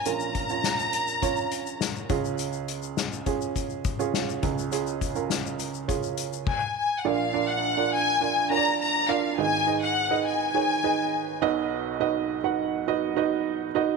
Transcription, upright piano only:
<<
  \new Staff \with { instrumentName = "Upright piano" } { \time 4/4 \key bes \phrygian \tempo 4 = 103 <des' f' bes'>8. <des' f' des''>4 r16 <des' f' des''>4. <des' f' aes'>8~ | <des' f' aes'>4~ <des' f' aes'>16 r16 <des' f' aes'>4 r16 <des' f' aes'>4 r16 | <des' f' aes'>8. <des' f' bes'>4 r16 <des' f' aes'>4 r4 | <d' f' bes' d''>8 <d' f' bes' d''>8. <d' f' bes' d''>8. <d' f' bes' d''>8 <d' f' bes' des'' d''>8. r16 <d' f' bes' d''>8 |
<ees' aes' ces'' ees''>8 <ees' aes' ces'' ees''>8. <ees' aes' ces'' ees''>8. <ees' aes' ces'' des''>8 <ees' aes' ces'' ees''>8. r16 <dis' fis' b' dis''>8~ | <dis' fis' b' dis''>16 r16 <dis' fis' b' dis''>8. <dis' fis' b' fis''>8. <dis' fis' b' dis''>8 <dis' fis' b' dis''>8. r16 <dis' fis' b' dis''>8 | }
  \new Staff \with { instrumentName = "Upright piano" } { \clef bass \time 4/4 \key bes \phrygian <bes,, bes,>2.~ <bes,, bes,>8 <des, des>8~ | <des, des>2.~ <des, des>8 <des, des>8~ | <des, des>2. r4 | <bes,, bes,>1 |
<aes,, aes,>2.~ <aes,, aes,>8 <b,, b,>8~ | <b,, b,>2.~ <b,, b,>8 r8 | }
>>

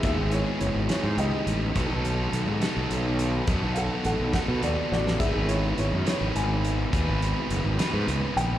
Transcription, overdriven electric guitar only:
\new Staff \with { instrumentName = "Overdriven electric guitar" } { \time 6/8 \key gis \phrygian \tempo 4. = 70 <gis, dis gis b dis' gis'>4. <gis, dis gis b dis' gis'>4. | <b, dis fis b dis' a'>4. <b, dis fis b dis' a'>4. | <b, dis fis b dis' a'>4. <b, dis fis b dis' a'>4. | <gis, dis gis b dis' b'>4. <gis, dis gis b dis' b'>4. |
<gis, dis gis b dis' b'>4. <gis, dis gis b dis' b'>4. | }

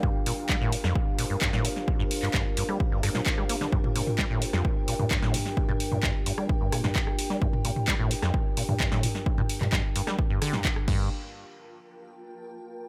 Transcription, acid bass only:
\new Staff \with { instrumentName = "Acid bass" } { \clef bass \time 4/4 \key g \minor \tempo 4 = 130 g,16 r16 bes,16 r16 g16 a,16 bes,16 f,16 r8 bes,16 g,16 g,16 a,16 bes,16 r16 | r16 g,16 r16 g,16 g,16 r16 g,16 g16 r16 g,16 g,16 bes,16 r16 g16 bes16 d16 | g,16 r16 bes,16 r16 g16 a,16 bes,16 f,16 r8 bes,16 g,16 g,16 a,16 bes,16 r16 | r16 g,16 r16 g,16 g,16 r16 g,16 g16 r16 g,16 bes,16 g,16 r8. g16 |
g,16 r16 bes,16 r16 g16 a,16 bes,16 f,16 r8 bes,16 g,16 g,16 a,16 bes,16 r16 | r16 g,16 r16 g,16 g,16 r16 g,16 g16 r16 g,16 d16 g,16 r8 g,8 | r1 | }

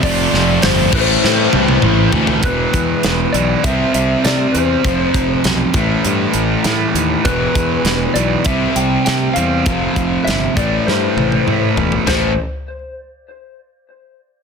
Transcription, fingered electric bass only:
\new Staff \with { instrumentName = "Fingered electric bass" } { \clef bass \time 4/4 \key a \minor \tempo 4 = 100 f,,8 f,,8 g,,8 a,,8 a,8 c,8 a,,8 d,8 | e,,8 e,8 e,,8 b,,8 c,8 c,8 c8 e,8 | f,,8 f,,8 b,,8 a,,8 g,8 a,,8 a,8 dis,8 | e,,8 e,8 e,,8 b,,8 c,8 c,8 c8 e,8 |
f,,8 f,,8 g,,8 a,,8 g,8 a,,8 a,8 e,,8 | a,,8 r2. r8 | }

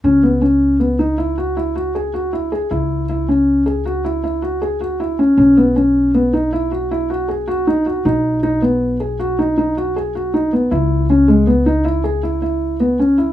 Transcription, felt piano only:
\new Staff \with { instrumentName = "Felt piano" } { \time 7/4 \key cis \minor \tempo 4 = 157 cis'8 b8 cis'4 b8 dis'8 e'8 fis'8 e'8 fis'8 gis'8 fis'8 e'8 gis'8 | e'4 e'8 cis'4 gis'8 fis'8 e'8 e'8 fis'8 gis'8 fis'8 e'8 cis'8 | cis'8 b8 cis'4 b8 dis'8 e'8 fis'8 e'8 fis'8 gis'8 fis'8 dis'8 fis'8 | dis'4 dis'8 b4 gis'8 fis'8 dis'8 dis'8 fis'8 gis'8 fis'8 dis'8 b8 |
e'4 cis'8 gis8 b8 dis'8 e'8 gis'8 e'8 e'4 b8 cis'8 e'8 | }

